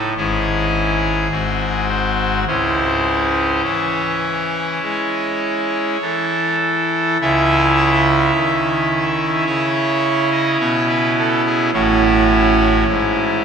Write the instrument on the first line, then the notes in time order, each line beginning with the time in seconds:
pipe organ
Already playing: A2 D#4
0.17 G#1 G#2 C#4 E4 G#4
1.31 G#1 G#2 C4 F#4
1.89 C5
2.47 C#2 C#3 C#4 E4 C5
3.65 E3 C#5
4.83 G#3
6.01 E3 A4
7.21 C#2 C#3 C#4 E4 E5
8.34 D#3
9.47 C#3 C#5
10.32 D#5
10.60 B2 C#5
10.89 B4
11.18 A4
11.46 G#4
11.74 A1 A2 C#4 E4 F#4
12.88 G#2 E4